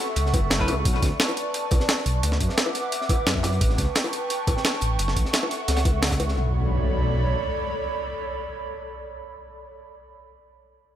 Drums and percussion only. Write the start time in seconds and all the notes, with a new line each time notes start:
0.16 closed hi-hat
0.26 snare
0.34 kick, closed hi-hat, high bongo
0.50 snare, closed hi-hat
0.59 kick, snare
0.68 closed hi-hat, high bongo
0.85 kick, closed hi-hat
0.94 snare
1.02 kick, snare, closed hi-hat
1.20 snare, closed hi-hat
1.28 closed hi-hat, high bongo
1.37 closed hi-hat
1.54 closed hi-hat
1.71 kick, closed hi-hat, high bongo
1.80 snare
1.89 snare, closed hi-hat
1.98 snare
2.06 closed hi-hat
2.23 closed hi-hat
2.32 snare
2.40 kick, closed hi-hat
2.49 snare
2.57 snare, closed hi-hat
2.66 high bongo
2.75 snare, closed hi-hat
2.92 closed hi-hat
3.01 snare
3.09 kick, closed hi-hat, high bongo
3.26 snare, closed hi-hat
3.35 kick, snare
3.43 snare, closed hi-hat, high bongo
3.53 closed hi-hat
3.61 kick, closed hi-hat
3.70 snare
3.78 kick, snare, closed hi-hat
3.95 snare, closed hi-hat
4.04 closed hi-hat, high bongo
4.13 closed hi-hat
4.30 closed hi-hat
4.47 kick, closed hi-hat, high bongo
4.57 snare
4.65 snare, closed hi-hat
4.73 snare
4.81 closed hi-hat
4.99 closed hi-hat
5.08 snare
5.16 kick, closed hi-hat
5.25 snare
5.33 snare, closed hi-hat
5.43 high bongo
5.51 snare, closed hi-hat
5.68 snare, closed hi-hat
5.76 snare, closed hi-hat
5.85 kick, closed hi-hat, high bongo
6.02 snare, closed hi-hat
6.07 snare, closed hi-hat
6.10 kick, snare, closed hi-hat
6.20 closed hi-hat, high bongo
6.28 snare